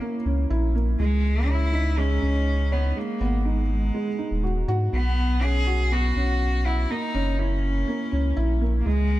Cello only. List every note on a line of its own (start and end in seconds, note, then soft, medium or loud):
0.00 0.22 A#3 medium
0.99 1.51 G#3 loud
1.49 2.00 E4 loud
1.99 2.74 C#4 loud
2.73 2.99 B3 medium
2.97 3.48 A#3 medium
3.46 4.69 G#3 medium
4.94 5.45 B3 loud
5.43 5.94 G#4 loud
5.92 6.67 F#4 loud
6.66 6.91 E4 loud
6.90 7.41 D#4 loud
7.39 8.62 C#4 loud
8.80 8.87 A#3 medium
8.86 9.20 G#3 loud